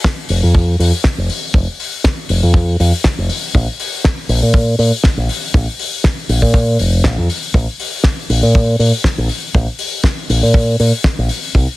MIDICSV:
0, 0, Header, 1, 3, 480
1, 0, Start_track
1, 0, Tempo, 500000
1, 1482, Time_signature, 4, 2, 24, 8
1, 11298, End_track
2, 0, Start_track
2, 0, Title_t, "Fingered electric bass"
2, 0, Program_c, 0, 33
2, 284, Note_on_c, 0, 29, 85
2, 393, Note_off_c, 0, 29, 0
2, 413, Note_on_c, 0, 41, 83
2, 736, Note_off_c, 0, 41, 0
2, 762, Note_on_c, 0, 41, 82
2, 872, Note_off_c, 0, 41, 0
2, 1131, Note_on_c, 0, 29, 86
2, 1225, Note_off_c, 0, 29, 0
2, 1478, Note_on_c, 0, 29, 93
2, 1590, Note_off_c, 0, 29, 0
2, 2203, Note_on_c, 0, 29, 88
2, 2312, Note_off_c, 0, 29, 0
2, 2333, Note_on_c, 0, 41, 84
2, 2656, Note_off_c, 0, 41, 0
2, 2686, Note_on_c, 0, 41, 86
2, 2794, Note_off_c, 0, 41, 0
2, 3053, Note_on_c, 0, 29, 88
2, 3146, Note_off_c, 0, 29, 0
2, 3404, Note_on_c, 0, 34, 95
2, 3513, Note_off_c, 0, 34, 0
2, 4116, Note_on_c, 0, 34, 89
2, 4229, Note_off_c, 0, 34, 0
2, 4249, Note_on_c, 0, 46, 88
2, 4574, Note_off_c, 0, 46, 0
2, 4595, Note_on_c, 0, 46, 82
2, 4708, Note_off_c, 0, 46, 0
2, 4964, Note_on_c, 0, 34, 88
2, 5062, Note_off_c, 0, 34, 0
2, 5320, Note_on_c, 0, 34, 95
2, 5431, Note_off_c, 0, 34, 0
2, 6038, Note_on_c, 0, 34, 81
2, 6150, Note_off_c, 0, 34, 0
2, 6164, Note_on_c, 0, 46, 85
2, 6492, Note_off_c, 0, 46, 0
2, 6523, Note_on_c, 0, 29, 89
2, 6729, Note_off_c, 0, 29, 0
2, 6763, Note_on_c, 0, 34, 100
2, 6873, Note_off_c, 0, 34, 0
2, 6890, Note_on_c, 0, 41, 89
2, 6985, Note_off_c, 0, 41, 0
2, 7241, Note_on_c, 0, 34, 97
2, 7352, Note_off_c, 0, 34, 0
2, 7963, Note_on_c, 0, 34, 84
2, 8073, Note_off_c, 0, 34, 0
2, 8091, Note_on_c, 0, 46, 87
2, 8415, Note_off_c, 0, 46, 0
2, 8442, Note_on_c, 0, 46, 81
2, 8552, Note_off_c, 0, 46, 0
2, 8812, Note_on_c, 0, 34, 90
2, 8906, Note_off_c, 0, 34, 0
2, 9165, Note_on_c, 0, 34, 98
2, 9274, Note_off_c, 0, 34, 0
2, 9883, Note_on_c, 0, 34, 87
2, 9992, Note_off_c, 0, 34, 0
2, 10011, Note_on_c, 0, 46, 88
2, 10335, Note_off_c, 0, 46, 0
2, 10364, Note_on_c, 0, 46, 85
2, 10473, Note_off_c, 0, 46, 0
2, 10736, Note_on_c, 0, 34, 95
2, 10828, Note_off_c, 0, 34, 0
2, 11085, Note_on_c, 0, 36, 98
2, 11194, Note_off_c, 0, 36, 0
2, 11298, End_track
3, 0, Start_track
3, 0, Title_t, "Drums"
3, 42, Note_on_c, 9, 36, 104
3, 46, Note_on_c, 9, 38, 103
3, 138, Note_off_c, 9, 36, 0
3, 142, Note_off_c, 9, 38, 0
3, 277, Note_on_c, 9, 46, 96
3, 373, Note_off_c, 9, 46, 0
3, 524, Note_on_c, 9, 36, 107
3, 620, Note_off_c, 9, 36, 0
3, 771, Note_on_c, 9, 46, 107
3, 867, Note_off_c, 9, 46, 0
3, 998, Note_on_c, 9, 38, 108
3, 1003, Note_on_c, 9, 36, 117
3, 1094, Note_off_c, 9, 38, 0
3, 1099, Note_off_c, 9, 36, 0
3, 1244, Note_on_c, 9, 46, 106
3, 1340, Note_off_c, 9, 46, 0
3, 1479, Note_on_c, 9, 36, 118
3, 1575, Note_off_c, 9, 36, 0
3, 1725, Note_on_c, 9, 46, 98
3, 1821, Note_off_c, 9, 46, 0
3, 1961, Note_on_c, 9, 38, 109
3, 1965, Note_on_c, 9, 36, 127
3, 2057, Note_off_c, 9, 38, 0
3, 2061, Note_off_c, 9, 36, 0
3, 2199, Note_on_c, 9, 46, 100
3, 2295, Note_off_c, 9, 46, 0
3, 2438, Note_on_c, 9, 36, 127
3, 2534, Note_off_c, 9, 36, 0
3, 2688, Note_on_c, 9, 46, 113
3, 2784, Note_off_c, 9, 46, 0
3, 2920, Note_on_c, 9, 38, 121
3, 2925, Note_on_c, 9, 36, 104
3, 3016, Note_off_c, 9, 38, 0
3, 3021, Note_off_c, 9, 36, 0
3, 3162, Note_on_c, 9, 46, 110
3, 3258, Note_off_c, 9, 46, 0
3, 3295, Note_on_c, 9, 46, 75
3, 3391, Note_off_c, 9, 46, 0
3, 3405, Note_on_c, 9, 36, 105
3, 3501, Note_off_c, 9, 36, 0
3, 3644, Note_on_c, 9, 46, 119
3, 3740, Note_off_c, 9, 46, 0
3, 3883, Note_on_c, 9, 38, 106
3, 3891, Note_on_c, 9, 36, 127
3, 3979, Note_off_c, 9, 38, 0
3, 3987, Note_off_c, 9, 36, 0
3, 4119, Note_on_c, 9, 46, 116
3, 4215, Note_off_c, 9, 46, 0
3, 4357, Note_on_c, 9, 36, 127
3, 4453, Note_off_c, 9, 36, 0
3, 4598, Note_on_c, 9, 46, 104
3, 4694, Note_off_c, 9, 46, 0
3, 4834, Note_on_c, 9, 38, 119
3, 4849, Note_on_c, 9, 36, 122
3, 4930, Note_off_c, 9, 38, 0
3, 4945, Note_off_c, 9, 36, 0
3, 5080, Note_on_c, 9, 46, 105
3, 5176, Note_off_c, 9, 46, 0
3, 5320, Note_on_c, 9, 36, 121
3, 5416, Note_off_c, 9, 36, 0
3, 5562, Note_on_c, 9, 46, 107
3, 5658, Note_off_c, 9, 46, 0
3, 5799, Note_on_c, 9, 38, 101
3, 5805, Note_on_c, 9, 36, 120
3, 5895, Note_off_c, 9, 38, 0
3, 5901, Note_off_c, 9, 36, 0
3, 6041, Note_on_c, 9, 46, 118
3, 6137, Note_off_c, 9, 46, 0
3, 6165, Note_on_c, 9, 36, 62
3, 6261, Note_off_c, 9, 36, 0
3, 6277, Note_on_c, 9, 36, 116
3, 6373, Note_off_c, 9, 36, 0
3, 6520, Note_on_c, 9, 46, 100
3, 6616, Note_off_c, 9, 46, 0
3, 6759, Note_on_c, 9, 38, 105
3, 6763, Note_on_c, 9, 36, 104
3, 6855, Note_off_c, 9, 38, 0
3, 6859, Note_off_c, 9, 36, 0
3, 7005, Note_on_c, 9, 46, 99
3, 7101, Note_off_c, 9, 46, 0
3, 7129, Note_on_c, 9, 46, 69
3, 7225, Note_off_c, 9, 46, 0
3, 7240, Note_on_c, 9, 36, 117
3, 7336, Note_off_c, 9, 36, 0
3, 7485, Note_on_c, 9, 46, 109
3, 7581, Note_off_c, 9, 46, 0
3, 7715, Note_on_c, 9, 38, 104
3, 7724, Note_on_c, 9, 36, 115
3, 7811, Note_off_c, 9, 38, 0
3, 7820, Note_off_c, 9, 36, 0
3, 7966, Note_on_c, 9, 46, 112
3, 8062, Note_off_c, 9, 46, 0
3, 8208, Note_on_c, 9, 36, 117
3, 8304, Note_off_c, 9, 36, 0
3, 8448, Note_on_c, 9, 46, 111
3, 8544, Note_off_c, 9, 46, 0
3, 8681, Note_on_c, 9, 36, 105
3, 8683, Note_on_c, 9, 38, 103
3, 8777, Note_off_c, 9, 36, 0
3, 8779, Note_off_c, 9, 38, 0
3, 8921, Note_on_c, 9, 46, 99
3, 9017, Note_off_c, 9, 46, 0
3, 9164, Note_on_c, 9, 36, 106
3, 9260, Note_off_c, 9, 36, 0
3, 9396, Note_on_c, 9, 46, 113
3, 9492, Note_off_c, 9, 46, 0
3, 9635, Note_on_c, 9, 36, 121
3, 9638, Note_on_c, 9, 38, 111
3, 9731, Note_off_c, 9, 36, 0
3, 9734, Note_off_c, 9, 38, 0
3, 9885, Note_on_c, 9, 46, 113
3, 9981, Note_off_c, 9, 46, 0
3, 10120, Note_on_c, 9, 36, 115
3, 10216, Note_off_c, 9, 36, 0
3, 10363, Note_on_c, 9, 46, 106
3, 10459, Note_off_c, 9, 46, 0
3, 10600, Note_on_c, 9, 38, 111
3, 10601, Note_on_c, 9, 36, 122
3, 10696, Note_off_c, 9, 38, 0
3, 10697, Note_off_c, 9, 36, 0
3, 10839, Note_on_c, 9, 46, 98
3, 10935, Note_off_c, 9, 46, 0
3, 10974, Note_on_c, 9, 46, 77
3, 11070, Note_off_c, 9, 46, 0
3, 11086, Note_on_c, 9, 36, 101
3, 11182, Note_off_c, 9, 36, 0
3, 11298, End_track
0, 0, End_of_file